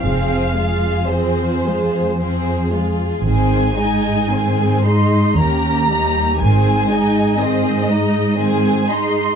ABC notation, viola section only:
X:1
M:3/4
L:1/8
Q:1/4=57
K:Ab
V:1 name="Viola section" clef=bass
[F,C] A, [F,C] A, [F,C] A, | [E,C] [A,E] [E,C] [A,E] [B,D] [G,B,] | [E,C] [A,E] [E,C] [A,E] [E,C] [A,E] |]